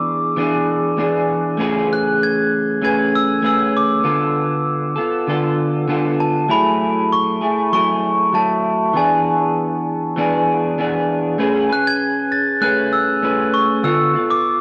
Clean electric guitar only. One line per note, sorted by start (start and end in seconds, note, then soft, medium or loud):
0.00 0.36 E3 medium
0.00 0.37 B3 medium
0.00 0.37 D4 medium
0.00 0.39 G#4 medium
0.36 0.97 E3 medium
0.36 0.98 B3 medium
0.36 0.97 D4 medium
0.36 0.99 G#4 medium
0.97 4.03 E3 medium
0.97 1.57 B3 medium
0.97 1.58 D4 medium
0.97 1.60 G#4 medium
1.57 2.81 A3 medium
1.57 2.81 C#4 medium
1.57 2.82 G#4 medium
1.57 2.84 B4 medium
2.82 3.42 A3 medium
2.82 3.42 C#4 medium
2.82 3.42 G#4 medium
2.82 3.44 B4 medium
3.42 4.07 A3 medium
3.42 4.03 C#4 medium
3.42 4.04 G#4 medium
3.42 4.05 B4 medium
4.04 4.96 D3 medium
4.04 4.96 B3 medium
4.04 4.97 F4 medium
4.04 4.95 A4 medium
4.96 5.27 B3 soft
4.96 5.28 F4 soft
4.96 5.27 A4 medium
5.27 5.86 D3 medium
5.27 5.87 B3 medium
5.27 5.88 F4 medium
5.27 5.90 A4 medium
5.88 6.49 D3 medium
5.88 6.49 B3 medium
5.88 6.49 F4 medium
5.88 6.50 A4 medium
6.48 7.41 F#3 medium
6.48 7.41 A3 medium
6.48 7.42 E4 medium
6.48 7.41 G#4 medium
7.41 7.72 A3 soft
7.41 7.73 E4 soft
7.41 7.72 G#4 soft
7.72 8.31 F#3 medium
7.72 8.33 A3 medium
7.72 8.34 E4 medium
7.72 8.36 G#4 medium
8.33 8.93 F#3 medium
8.33 8.95 A3 medium
8.33 8.96 E4 medium
8.94 10.16 E3 medium
8.94 10.17 B3 medium
8.94 10.17 D4 medium
8.94 10.18 G#4 medium
10.16 10.78 E3 medium
10.16 10.78 B3 medium
10.16 10.79 D4 medium
10.16 10.80 G#4 medium
10.78 11.38 E3 medium
10.78 11.39 B3 medium
10.78 11.39 D4 medium
10.78 11.40 G#4 medium
11.38 11.69 A3 medium
11.38 11.70 C#4 medium
11.38 11.69 G#4 medium
11.38 11.68 B4 medium
11.69 12.61 C#4 soft
11.69 12.61 G#4 soft
11.69 12.63 B4 soft
12.61 13.22 A3 medium
12.61 13.22 C#4 medium
12.61 13.23 G#4 medium
12.61 13.24 B4 medium
13.22 13.84 A3 medium
13.22 13.84 C#4 medium
13.22 13.85 G#4 medium
13.22 13.87 B4 medium
13.83 14.14 D3 medium
13.83 14.15 B3 medium
13.83 14.14 F4 medium
13.83 14.12 A4 medium
14.14 14.61 B3 soft
14.14 14.61 F4 soft
14.14 14.61 A4 soft